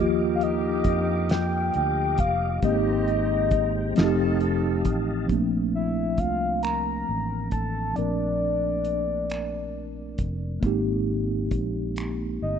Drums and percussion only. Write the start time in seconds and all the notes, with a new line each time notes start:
0.41 closed hi-hat
0.84 kick, closed hi-hat
1.29 snare, closed hi-hat
1.74 closed hi-hat
2.18 kick, closed hi-hat
2.62 kick, closed hi-hat
3.08 closed hi-hat
3.51 kick, closed hi-hat
3.96 snare, closed hi-hat
4.40 closed hi-hat
4.85 kick, closed hi-hat
5.29 kick, closed hi-hat
6.18 kick, closed hi-hat
6.63 finger snap, closed hi-hat
7.51 kick, closed hi-hat
7.96 closed hi-hat
8.84 closed hi-hat
9.30 finger snap, closed hi-hat
10.18 kick, closed hi-hat
10.63 kick, closed hi-hat
11.51 kick, closed hi-hat
11.96 finger snap, closed hi-hat